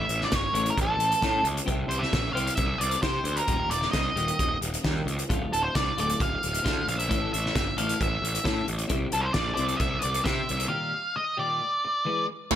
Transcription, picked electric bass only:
0.09 0.25 A1 medium
0.33 0.48 G1 medium
0.53 0.69 A1 medium
0.78 0.93 A1 medium
0.97 1.14 A1 medium
1.23 1.39 A2 medium
1.43 1.59 C#2 medium
1.68 1.83 C2 medium
1.88 2.04 C2 medium
2.13 2.28 A#1 medium
2.34 2.50 C2 medium
2.58 2.73 C2 medium
2.80 2.95 C2 medium
3.03 3.18 C3 medium
3.24 3.40 D2 medium
3.48 3.64 D#1 medium
3.70 3.85 D#1 medium
3.94 4.09 C2 medium
4.14 4.30 D#1 medium
4.40 4.55 D#1 medium
4.61 4.77 D#1 medium
4.85 5.00 D#2 medium
5.06 5.21 C#2 medium
5.30 5.45 D1 medium
5.52 5.67 D1 medium
5.76 5.91 C2 medium
5.98 6.13 D1 medium
6.20 6.35 D1 medium
6.44 6.59 D1 medium
6.66 6.81 D2 medium
6.88 7.11 A#1 medium
7.11 7.26 A1 medium
7.34 7.48 A1 medium
7.56 7.71 G1 medium
7.77 7.92 A1 medium
8.01 8.16 A1 medium
8.22 8.38 A1 medium
8.45 8.60 A2 medium
8.68 8.83 A1 medium
8.91 9.06 C2 medium
9.14 9.29 C2 medium
9.35 9.50 A#1 medium
9.58 9.73 C2 medium
9.81 9.96 C2 medium
10.04 10.19 C2 medium
10.25 10.41 C3 medium
10.50 10.65 C2 medium
12.52 12.55 A1 medium

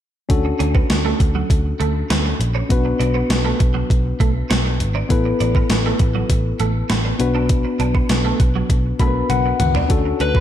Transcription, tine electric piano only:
0.29 2.65 C#4 medium
0.29 2.66 D4 medium
0.29 2.66 F#4 medium
0.29 2.66 A4 medium
2.69 5.06 B3 medium
2.69 2.77 C#4 soft
2.69 5.06 F#4 medium
2.69 5.07 B4 medium
2.77 5.09 D4 medium
5.09 7.16 B3 medium
5.09 7.16 E4 medium
5.09 7.16 A4 medium
5.09 7.17 B4 medium
7.19 8.96 B3 medium
7.19 8.96 D4 medium
7.19 8.97 F#4 medium
7.19 8.97 B4 medium
8.99 9.90 B3 soft
8.99 9.88 D4 soft
8.99 9.89 F#4 soft
8.99 9.07 A#4 soft
8.99 9.28 B5 medium
9.07 9.94 B4 medium
9.30 9.58 F#5 medium
9.60 9.88 F#5 medium
9.89 10.40 C#4 medium
9.89 10.40 D4 medium
9.89 10.40 F#4 medium
9.89 10.40 A4 medium

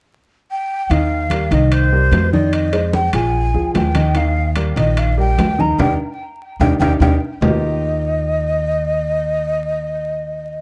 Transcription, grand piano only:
0.91 1.24 D#3 medium
0.91 1.24 D#4 medium
0.91 1.24 D#5 medium
1.31 1.47 G3 medium
1.31 1.48 G4 medium
1.31 1.48 A#4 medium
1.52 1.85 D#3 medium
1.52 1.85 D#4 medium
1.52 1.85 D#5 medium
1.92 2.26 G3 medium
1.92 2.26 G4 medium
1.92 2.26 A#4 medium
2.33 2.66 D#3 medium
2.33 2.66 D#4 medium
2.33 2.67 D#5 medium
2.73 3.06 G#3 medium
2.73 3.06 G#4 medium
2.73 3.06 C5 medium
3.14 3.47 F3 medium
3.14 3.47 F4 medium
3.14 3.48 G#4 medium
3.54 3.88 F3 medium
3.54 3.88 F4 medium
3.54 3.88 G#4 medium
3.95 4.12 D#3 medium
3.95 4.12 D#4 medium
3.95 4.12 D#5 medium
4.15 4.49 D#3 medium
4.15 4.49 D#4 medium
4.15 4.49 D#5 medium
4.56 4.73 G3 medium
4.56 4.73 G4 medium
4.56 4.73 A#4 medium
4.76 5.10 D#3 medium
4.76 5.10 D#4 medium
4.76 5.10 D#5 medium
5.17 5.51 G3 medium
5.17 5.51 G4 medium
5.17 5.51 A#4 medium
5.58 5.75 D#3 medium
5.58 5.76 D#4 medium
5.58 5.76 D#5 medium
5.79 5.92 D4 loud
5.79 5.92 D#4 medium
5.79 5.92 G4 medium
6.62 6.74 D4 medium
6.62 6.74 D#4 medium
6.62 6.74 G4 medium
6.82 6.94 D4 medium
6.82 6.95 D#4 loud
6.82 6.94 G4 medium
7.01 7.14 D4 medium
7.01 7.14 D#4 medium
7.01 7.14 G4 medium
7.43 10.61 D#3 medium
7.43 10.61 A#3 medium
7.43 10.61 D#4 medium
7.43 10.61 F4 medium
7.43 10.61 G4 medium

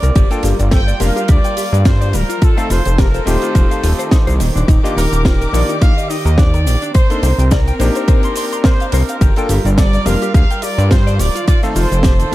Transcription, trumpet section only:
0.00 0.45 D5 medium
0.73 0.99 G5 loud
1.01 1.27 F5 loud
1.30 1.82 D5 loud
1.87 2.15 C5 loud
2.15 2.43 A#4 medium
2.43 2.71 A4 loud
2.72 2.99 C5 loud
3.00 3.28 A#4 medium
3.29 4.37 C5 medium
4.97 5.50 A#4 loud
5.53 5.82 D5 medium
5.81 6.08 F5 loud
6.09 6.38 D#5 loud
6.37 6.94 D5 loud
6.94 7.47 C5 loud
7.50 8.64 A#4 loud
8.64 8.93 C5 medium
8.92 9.51 A#4 medium
9.78 10.04 D5 loud
10.06 10.33 F5 loud
10.34 10.61 F5 loud
10.63 10.91 D5 loud
10.91 11.19 C5 loud
11.19 11.46 D5 loud
11.48 11.60 D5 loud
11.76 12.29 C5 loud

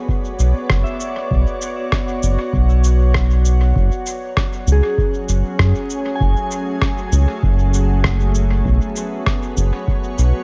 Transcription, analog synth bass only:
0.39 0.53 B1 medium
0.70 0.84 F#1 loud
1.31 1.45 B1 medium
2.23 2.37 F#1 loud
2.53 3.73 B1 medium
3.76 3.90 F#1 medium
4.67 4.82 C#2 loud
5.29 5.43 F#1 medium
5.59 5.74 F#2 loud
6.21 6.35 F#1 loud
7.12 7.27 C#2 loud
7.43 8.63 F#1 medium
8.65 8.80 B1 medium
9.57 9.71 F#1 loud
10.18 10.33 B1 medium

